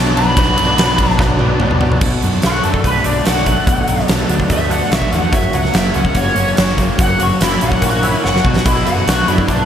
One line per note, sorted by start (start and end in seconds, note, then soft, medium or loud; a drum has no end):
0.00 0.35 B1 medium
0.00 0.36 B2 loud
0.00 0.18 F#3 loud
0.00 0.17 B3 loud
0.00 0.16 D4 medium
0.00 0.34 D4 medium
0.00 0.34 F#4 medium
0.00 0.34 B4 medium
0.00 0.34 D5 medium
0.00 0.14 A5 medium
0.16 0.37 F#3 medium
0.16 0.38 B3 medium
0.16 0.39 D4 medium
0.16 1.11 B5 medium
0.16 ride medium
0.16 cowbell medium
0.36 0.75 B1 medium
0.36 0.78 B2 medium
0.36 0.58 F#3 loud
0.36 0.57 B3 loud
0.36 2.00 D4 medium
0.36 0.56 D4 loud
0.36 2.00 F#4 medium
0.36 2.00 B4 medium
0.36 2.00 D5 medium
0.36 kick loud
0.36 ride loud
0.36 cowbell medium
0.57 0.78 F#3 medium
0.57 0.79 B3 medium
0.57 0.79 D4 medium
0.57 ride medium
0.78 0.97 B1 loud
0.78 1.59 B2 medium
0.78 1.41 F#3 medium
0.78 1.40 B3 medium
0.78 1.38 D4 medium
0.78 snare loud
0.78 ride loud
0.78 cowbell medium
0.98 1.18 B1 medium
0.98 kick medium
0.98 ride medium
1.10 1.57 A5 medium
1.10 snare soft
1.19 1.39 B1 loud
1.19 kick loud
1.19 snare medium
1.19 cowbell medium
1.39 1.60 B1 medium
1.39 1.60 F#3 medium
1.39 1.60 B3 medium
1.39 1.61 D4 medium
1.39 high tom medium
1.39 cowbell medium
1.60 1.80 B1 medium
1.60 2.01 B2 medium
1.60 1.83 F#3 medium
1.60 1.82 B3 loud
1.60 1.81 D4 loud
1.60 mid tom medium
1.60 cowbell medium
1.71 mid tom medium
1.81 2.01 B1 medium
1.81 2.02 F#3 medium
1.81 2.02 B3 medium
1.81 2.01 D4 medium
1.81 floor tom loud
1.81 cowbell medium
1.92 floor tom medium
2.01 2.17 B1 medium
2.01 3.06 B2 medium
2.01 5.30 D4 medium
2.01 5.30 F#4 medium
2.01 5.30 A4 medium
2.01 5.30 B4 medium
2.01 kick loud
2.01 crash loud
2.22 2.38 F#2 medium
2.22 3.87 F#3 medium
2.22 closed hi-hat medium
2.34 snare soft
2.42 2.59 B1 medium
2.42 2.83 A3 medium
2.42 2.64 F#4 medium
2.42 snare loud
2.42 closed hi-hat medium
2.63 2.80 F#2 medium
2.63 3.04 D4 medium
2.63 2.83 A4 medium
2.63 closed hi-hat medium
2.74 kick medium
2.84 3.00 B1 medium
2.84 3.45 A3 medium
2.84 3.04 B4 medium
2.84 kick medium
2.84 closed hi-hat medium
3.04 3.21 B1 medium
3.04 4.09 D4 medium
3.04 3.26 D5 medium
3.04 closed hi-hat medium
3.25 3.58 B1 medium
3.25 4.91 F#4 medium
3.25 4.07 F#5 medium
3.25 snare medium
3.25 closed hi-hat medium
3.37 snare soft
3.46 4.07 A3 medium
3.46 kick medium
3.46 closed hi-hat medium
3.67 3.82 B1 medium
3.67 4.71 B2 medium
3.67 kick loud
3.67 closed hi-hat loud
3.88 4.03 B1 medium
3.88 5.32 F#3 medium
3.88 closed hi-hat medium
3.99 snare soft
4.08 4.24 B1 medium
4.08 4.48 A3 medium
4.08 snare loud
4.08 closed hi-hat medium
4.27 4.45 D2 medium
4.27 4.69 D4 medium
4.27 closed hi-hat medium
4.40 kick medium
4.50 4.81 D2 medium
4.50 5.11 A3 medium
4.50 4.71 E5 loud
4.50 kick medium
4.50 closed hi-hat medium
4.71 5.33 D4 medium
4.71 4.92 F#5 medium
4.71 closed hi-hat medium
4.91 5.07 B1 medium
4.91 6.56 F#4 medium
4.91 5.12 E5 medium
4.91 snare loud
4.91 closed hi-hat medium
5.02 kick medium
5.12 5.28 E2 medium
5.12 5.33 A3 medium
5.12 5.33 F#5 medium
5.12 snare soft
5.12 closed hi-hat medium
5.32 5.48 F#1 medium
5.32 5.53 F#3 medium
5.32 8.42 A#3 medium
5.32 8.42 C#4 medium
5.32 8.41 F#4 medium
5.32 8.41 A#4 medium
5.32 5.54 E5 medium
5.32 kick loud
5.32 closed hi-hat loud
5.53 5.70 C#2 medium
5.53 6.98 F#3 medium
5.53 5.75 F#5 medium
5.53 closed hi-hat medium
5.65 snare soft
5.73 5.90 F#1 medium
5.73 6.13 A#3 medium
5.73 5.95 E5 medium
5.73 snare loud
5.73 closed hi-hat medium
5.94 6.11 C#2 medium
5.94 6.35 C#4 medium
5.94 6.16 F#5 medium
5.94 closed hi-hat medium
6.05 kick medium
6.14 6.31 F#1 loud
6.14 6.75 A#3 medium
6.14 6.57 C#5 loud
6.14 kick medium
6.14 closed hi-hat medium
6.36 6.52 F#1 medium
6.36 7.41 C#4 medium
6.36 closed hi-hat medium
6.56 6.89 F#1 medium
6.56 8.24 F#4 medium
6.56 snare loud
6.56 closed hi-hat medium
6.69 snare soft
6.77 7.39 A#3 medium
6.77 kick medium
6.77 closed hi-hat medium
6.98 7.14 F#1 medium
6.98 7.19 F#3 medium
6.98 7.21 F#5 loud
6.98 kick loud
6.98 closed hi-hat loud
7.19 7.35 F#1 medium
7.19 8.85 F#3 medium
7.19 7.42 F#4 medium
7.19 closed hi-hat medium
7.40 7.56 F#1 loud
7.40 7.80 A#3 medium
7.40 7.62 E4 medium
7.40 snare medium
7.40 closed hi-hat medium
7.60 7.78 A#1 medium
7.60 8.02 C#4 medium
7.60 7.82 F#5 loud
7.60 closed hi-hat medium
7.72 kick medium
7.81 8.13 A#1 loud
7.81 8.44 A#3 medium
7.81 8.03 F#4 medium
7.81 kick medium
7.81 closed hi-hat medium
8.03 8.45 C#4 medium
8.03 8.23 E4 medium
8.03 closed hi-hat medium
8.24 8.40 F#1 medium
8.24 9.65 F#4 medium
8.24 8.44 F#5 medium
8.24 snare medium
8.36 snare medium
8.43 8.60 B1 medium
8.43 8.65 B2 medium
8.43 9.65 B3 medium
8.43 9.65 D4 medium
8.43 9.65 F#4 medium
8.43 8.66 F#4 medium
8.43 9.65 A4 medium
8.43 kick medium
8.56 snare medium
8.65 8.81 B1 medium
8.65 9.65 B2 medium
8.65 8.86 E4 medium
8.65 kick loud
8.65 closed hi-hat medium
8.65 crash medium
8.85 9.03 F#2 medium
8.85 9.65 F#3 medium
8.85 9.06 F#5 medium
8.85 closed hi-hat medium
9.06 9.23 B1 medium
9.06 9.48 A3 medium
9.06 9.27 F#4 medium
9.06 snare loud
9.06 closed hi-hat medium
9.27 9.44 F#2 medium
9.27 9.65 D4 medium
9.27 9.48 E4 medium
9.27 closed hi-hat medium
9.38 kick medium
9.48 9.64 B1 medium
9.48 9.65 A3 medium
9.48 9.65 D4 loud
9.48 kick medium
9.48 closed hi-hat medium